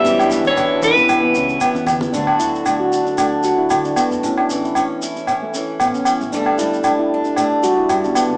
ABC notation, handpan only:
X:1
M:4/4
L:1/16
Q:"Swing 16ths" 1/4=115
K:D
V:1 name="Handpan"
C D2 E D2 E C2 B, C2 B, C2 B, | D2 E2 D F2 D D2 F E2 D B,2 | C D2 E C2 E C2 A, C2 B, C2 A, | D2 E2 D E2 D D2 F E2 D B,2 |]